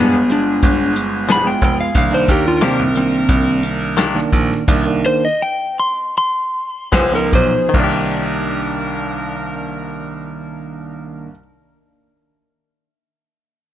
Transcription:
Already playing: G2 F3 G#3 B3 D4 F4 G#4
0.00 B3
0.13 G1
0.29 G#3 B3 D4 F4, closed hi-hat
0.63 G1, kick, closed hi-hat
0.96 closed hi-hat
1.29 F3 B3 D4 G#4 B5, snare, closed hi-hat
1.45 G#3 B3 F4 G5, snare
1.62 F1 G5, kick, closed hi-hat
1.81 F5
1.94 C2 D#3 A#3 D4 A#4 F5, kick, closed hi-hat
2.11 D#3 A#3 D4 C5
2.28 D#2 G4, kick, closed hi-hat
2.48 F4
2.61 C3 D#3 A#3 C4 D4 G4, snare, closed hi-hat
2.79 C2
2.95 D#3 A#3 C4 D4, closed hi-hat
3.29 C2, kick, closed hi-hat
3.63 closed hi-hat
3.97 D#3 A#3 D4 G4, snare, closed hi-hat
4.15 D#3 A#3 D4, snare
4.32 A#1, kick, closed hi-hat
4.52 snare
4.67 C2 D#3 A#3 D4, kick, closed hi-hat, crash
4.86 D#3 A#3 D4
5.06 C5
5.25 D#5
5.42 G5
5.80 C6
6.18 C6
6.92 C#2 F3 G#3 B3 C#4 F4 G#4 C5, kick, snare, closed hi-hat
7.12 F3 B3 D#4 A#4, snare
7.33 B1 C5, kick, closed hi-hat
7.69 D#3
7.73 C2 A#3 D4 A#4, kick, crash
7.79 D4
7.84 G4

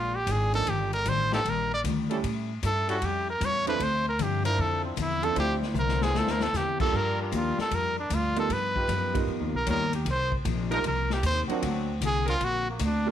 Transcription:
Already playing: A#1 A#2 G#3 D4 F4
0.15 G4
0.27 G#1 A#2 G#3 D4 F4, kick, hi-hat pedal, ride
0.31 G#4
0.53 F3 A#3 D4 D#4 A4 A#4, ride
0.66 G1 D#3 G3 D4 F4 G4, kick, ride
0.93 A#4, ride
1.06 A1 D#3 G3 D4 F4 C5, kick, hi-hat pedal, ride
1.31 F3 D4 D#4 G4 A4, snare
1.45 A#1 D#3 G3 D4 F4, kick, ride
1.50 A#4
1.74 D5
1.84 D2 D#3 G3 D4 F4, kick, hi-hat pedal, ride
2.09 G3 A3 C#4 E4 G4 A4, ride
2.24 A2 G3 C#4 E4, kick, ride
2.63 G2 A2 G3 C#4 E4 A4, kick, hi-hat pedal, ride
2.89 G3 C#4 E4 F#4 A4, ride
3.02 F2 A2 G3 C#4 E4 G4, kick, ride
3.30 A#4
3.41 E2 A2 G3 C#4 E4, kick, hi-hat pedal, ride
3.45 C#5
3.66 F3 C4 D4 E4 A4 B4 C5, ride
3.80 D2 D3 F3 C4 E4 C5, kick, ride
4.09 A#4
4.19 G2 D3 F3 C4 E4 G4, kick, hi-hat pedal, ride
4.45 F3 D4 E4 A#4 C5, ride
4.57 F2 D3 F3 C4 E4, kick
4.61 A4
4.85 C4
4.96 E2 D3 F3 C4 E4, kick, hi-hat pedal, ride
5.01 E4
5.22 F3 C4 D4 E4 A4, ride
5.35 D2 D3 F3 C4 D4 E4 C5, kick, ride
5.40 G4
5.62 snare
5.74 C2 D3 F3 C4 E4, hi-hat pedal
5.79 A#4
5.88 snare
6.01 G#4, snare
6.13 D2 D3 F3 C4 E4, snare
6.18 A4
6.27 A#4, snare
6.40 A4, snare
6.53 E2 D3 F3 C4 E4 G4, snare, hi-hat pedal
6.80 G3 A#3 D4 F4 A4, kick, crash
6.92 G2 F3 G3 A#3 D4 F4 A#4, kick
6.96 A#4
7.22 D4
7.32 D#2 G2 F3 A#3 D4, kick, hi-hat pedal, ride
7.36 F4
7.58 A4, muted upright bass stroke, snare
7.70 F2 G2 F3 A#3 D4, kick, ride
7.75 A#4
7.99 D4
8.10 D2 G2 F3 A#3 D4, kick, hi-hat pedal, ride
8.14 F4
8.36 G3 B3 D#4 F4 A4 A#4, ride
8.49 G2 F3 B3 D#4, kick, ride
8.53 B4
8.75 D#4 F4 G4 B4, kick
8.87 F#2 G2 F3 B3 D#4, kick, hi-hat pedal, ride
9.14 G3 B3 D#4 F4 A#4, kick, ride
9.27 F2 G2 F3 B3 D#4, kick
9.40 D#2
9.53 B1 A#4
9.67 D#2 G2 F3 G3 B3 D#4 F4 A#4 C#5, kick, hi-hat pedal, ride
9.93 G4, ride
10.05 C2 C3 F3 A#3 D#4, kick, ride
10.10 C5
10.32 kick
10.45 A#1 C3 F3 A#3 D#4, kick, hi-hat pedal, ride
10.70 F3 G3 D4 D#4 F4 A#4, ride
10.84 C2 C3 F3 A#3 D#4 A#4, kick, ride
11.10 G4, snare
11.23 D#2 C3 F3 A#3 D#4 C5, kick, hi-hat pedal, ride
11.48 F#3 C4 D4 F4 F#4 A#4, muted upright bass stroke, ride
11.62 D2 D3 A#3 C4 F#4, kick, ride
12.01 C2 D3 A#3 C4 F#4, kick, hi-hat pedal, ride
12.06 G#4
12.26 F#3 C4 D4 F4 A#4, ride
12.40 A#1 D3 A#3 C4 F#4, kick, ride
12.44 F#4
12.70 A#3
12.79 D2 D3 A#3 C4 F#4, kick, hi-hat pedal, ride
12.85 D4
13.06 G3 A#3 D4 F4 A4

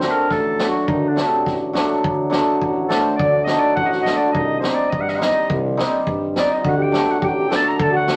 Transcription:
Already playing: C4 C5
0.01 F#3 A3 D4, snare
0.11 A#4
0.30 A1 A3 A4, kick, snare
0.59 F#3 A3 D4, snare
0.68 F#3 F#4
0.88 D2 D#3 D#4, kick
1.08 D3 D4
1.16 F#3 A3 D4, snare
1.28 C3 C4
1.46 A1, kick, snare
1.73 F#3 A3 D4, snare
2.04 D2, kick
2.30 F#3 A3 D4, snare
2.61 A1, kick
2.88 F#3 A3 D4 A4, snare
3.01 C5
3.16 D2 D5, kick
3.21 D4
3.44 F#3 A3 D4 D#5, snare
3.50 D#4
3.59 D5
3.75 A1 F#4 F#5, kick
3.85 D#5 F#5
3.92 snare
4.02 F#3 A3 D4 D#5, snare
4.17 D5
4.32 C2 D#4 D#5, kick
4.60 G3 C4 D#4 C5, snare
4.65 C4
4.74 D5
4.90 G2 D#5, kick
5.01 F#5
5.08 D#5, snare
5.15 G3 C4 D#4 F#5
5.21 D#4 D#5, snare
5.50 C2, kick
5.77 G3 C4 D#4, snare
6.06 G2, kick
6.36 G3 C4 D4 D#4 D5, snare
6.51 D#4 D#5
6.63 D2 F#4, kick
6.68 F#5
6.78 G4
6.82 G5
6.92 F#3 A3 D4, snare
7.08 F#4 F#5
7.21 A1 G4, kick
7.25 F#4 G5
7.34 G4
7.49 F#3 A3 D4 A4, snare
7.56 A5
7.68 A#5
7.78 D2 A4 A#5, kick
7.82 A5
7.93 F#4 F#5
8.07 F#3 A3 D4, snare

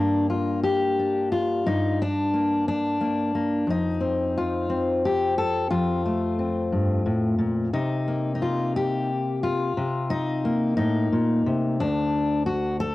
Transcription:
Already playing: G2 A#3 D4
0.30 F4
0.64 G4
0.99 D4
1.32 F4
1.66 G2 D#4
2.02 D4
2.34 A#3
2.68 D4
3.01 A#3
3.35 A#3
3.67 F2 D#4
4.01 C4
4.38 F4
4.70 C4
5.05 G4
5.38 A4
5.71 F2 F4
6.06 A3
6.39 C4
6.72 G2
7.06 A2
7.38 A#2
7.73 C3 D#4
8.08 A#3
8.35 D#4
8.42 F4
8.76 G4
9.43 F4
9.77 C3
10.10 D#4
10.45 A#3
10.77 A2 D#4
11.12 A#2
11.46 C3
11.80 D2 D4
12.46 F#4
12.80 A4

